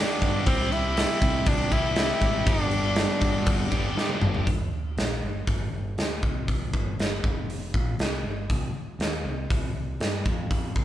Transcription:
0.00 0.45 G2 medium
0.00 0.45 D3 medium
0.00 0.47 G3 medium
0.00 0.46 B3 medium
0.00 0.46 D4 medium
0.00 0.48 D4 loud
0.00 0.49 G4 medium
0.22 0.41 G2 loud
0.22 kick medium
0.22 crash medium
0.46 1.05 C2 loud
0.46 1.70 C3 medium
0.46 1.73 G3 loud
0.46 0.74 C4 loud
0.46 1.71 C4 medium
0.46 1.70 E4 loud
0.46 1.70 G4 loud
0.46 kick loud
0.46 crash medium
0.72 1.50 E4 loud
0.72 crash medium
0.97 snare loud
0.97 crash medium
1.22 1.41 C2 loud
1.22 kick loud
1.22 crash medium
1.46 1.66 C2 medium
1.46 1.74 D4 loud
1.46 kick loud
1.46 crash medium
1.70 2.10 C2 loud
1.70 1.94 C3 medium
1.70 1.96 G3 medium
1.70 1.96 C4 medium
1.70 1.95 E4 medium
1.70 2.49 E4 loud
1.70 2.00 G4 medium
1.70 kick medium
1.70 crash medium
1.96 2.45 C3 medium
1.96 2.47 G3 medium
1.96 2.46 C4 medium
1.96 2.46 E4 medium
1.96 snare loud
1.96 crash medium
2.00 2.49 G4 medium
2.21 2.41 G#1 loud
2.21 kick medium
2.21 crash medium
2.45 3.05 G1 loud
2.45 3.70 G2 loud
2.45 3.70 D3 medium
2.45 3.71 G3 loud
2.45 3.71 B3 loud
2.45 3.97 D4 loud
2.45 3.71 D4 loud
2.45 kick loud
2.45 crash medium
2.49 3.70 G4 loud
2.71 crash medium
2.96 snare loud
2.96 crash medium
3.21 3.41 G1 medium
3.21 kick loud
3.21 crash medium
3.46 3.66 G1 medium
3.46 kick loud
3.46 crash medium
3.71 3.91 G1 loud
3.71 3.95 G2 medium
3.71 3.96 D3 medium
3.71 3.96 G3 medium
3.71 3.96 B3 medium
3.71 3.95 D4 medium
3.71 3.95 G4 loud
3.71 kick medium
3.71 crash medium
3.96 4.45 G2 medium
3.96 4.46 D3 medium
3.96 4.46 G3 medium
3.96 4.46 B3 medium
3.96 4.47 D4 medium
3.96 4.47 G4 medium
3.96 snare medium
4.09 high tom medium
4.21 4.41 G1 medium
4.21 mid tom loud
4.34 floor tom medium
4.47 4.70 G1 medium
4.47 kick medium
4.47 open hi-hat soft
4.72 muted fingered electric bass stroke soft
4.97 5.21 A#1 medium
4.97 snare loud
4.97 open hi-hat soft
5.22 5.46 G1 medium
5.47 5.71 G1 medium
5.47 kick medium
5.47 open hi-hat soft
5.72 5.96 G1 medium
5.98 6.21 D2 medium
5.98 snare medium
5.98 open hi-hat soft
6.23 6.70 C2 medium
6.23 kick medium
6.48 kick medium
6.48 open hi-hat soft
6.73 6.97 G1 medium
6.73 kick medium
6.98 7.22 G1 medium
6.98 snare medium
6.98 open hi-hat soft
7.24 7.71 F1 medium
7.24 kick medium
7.50 open hi-hat soft
7.74 7.98 A#1 medium
7.74 kick medium
7.99 8.23 C2 medium
7.99 snare medium
7.99 open hi-hat soft
8.24 8.48 G1 medium
8.50 8.73 C2 medium
8.50 kick medium
8.50 open hi-hat soft
8.75 muted fingered electric bass stroke soft
8.99 9.23 D#2 medium
8.99 snare medium
8.99 open hi-hat soft
9.25 9.48 C2 medium
9.50 9.74 C2 medium
9.50 kick loud
9.50 open hi-hat soft
9.75 9.99 C2 medium
10.00 10.24 G2 medium
10.00 snare loud
10.00 open hi-hat soft
10.26 10.73 F2 medium
10.26 kick medium
10.51 kick medium
10.51 open hi-hat soft
10.76 10.85 C2 medium
10.76 kick medium

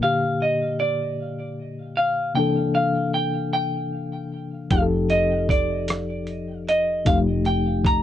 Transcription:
0.00 2.31 A#2 soft
0.00 2.33 D3 soft
0.00 2.32 A#3 soft
0.00 0.42 F5 medium
0.04 2.34 G4 medium
0.42 0.79 D#5 medium
0.80 2.01 D5 medium
1.97 2.34 F5 medium
2.35 4.67 C3 medium
2.35 4.69 E3 soft
2.35 4.67 A#3 soft
2.35 4.68 D4 soft
2.35 2.72 G5 medium
2.39 4.69 A4 medium
2.75 3.14 F5 medium
3.14 3.52 G5 medium
3.53 4.71 G5 medium
4.71 7.03 F1 medium
4.71 7.02 F3 medium
4.71 7.03 D#4 soft
4.71 7.04 G4 medium
4.71 4.82 F5 medium
4.71 kick medium
4.71 closed hi-hat medium
4.75 4.80 G#4 soft
4.82 7.08 A4 medium
5.10 5.50 D#5 medium
5.10 closed hi-hat soft
5.49 6.64 D5 medium
5.49 kick medium
5.49 closed hi-hat soft
5.88 cross-stick medium
5.88 closed hi-hat medium
6.27 closed hi-hat soft
6.69 7.09 D#5 medium
6.69 closed hi-hat medium
7.05 8.03 F1 medium
7.05 8.03 F3 medium
7.05 8.03 D#4 soft
7.05 8.03 G4 medium
7.05 7.18 F5 medium
7.05 kick medium
7.05 closed hi-hat medium
7.11 8.03 A3 medium
7.45 7.86 G5 medium
7.45 closed hi-hat soft
7.85 8.03 A#5 medium
7.85 kick medium
7.85 closed hi-hat medium

